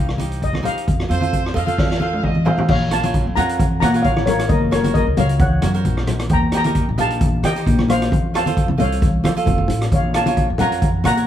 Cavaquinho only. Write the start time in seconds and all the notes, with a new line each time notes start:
0.18 D#4 G4 C5
0.63 D#4 G4 C5
1.09 F4 A4 C5
1.20 F4 A4 C5
1.54 F4 A4 D#5
1.66 F4 A4 C5
2.00 F4 A4 C5
2.45 F4 A4 C5
2.91 F4 A#4 C#5
3.03 F4 A#4 C#5
3.36 F4 A#4 C#5
3.81 F4 A#4 C#5
3.94 F4 A#4 C#5
4.71 F#4 A#4 C#5
4.84 F#4 A#4 C#5
5.17 F#4 A#4 C#5
5.62 F#4 A#4 C#5
5.74 F#4 A#4 C5
6.52 D#4 G4 A#4
6.65 D#4 G4 A#4
6.98 D#4 G4 A#4
7.43 D#4 G4 A#4
7.56 D#4 G4 C5
8.34 F4 A4 C5
8.46 F4 A4 C5
8.78 F4 A4 C5
9.24 F4 A4 C5
9.37 F4 A4
10.14 F4 A#4 C#5
10.26 F4 A#4 C#5
10.60 F4 A#4 C#5
11.04 F4 A#4 C#5
11.17 A#4 C#5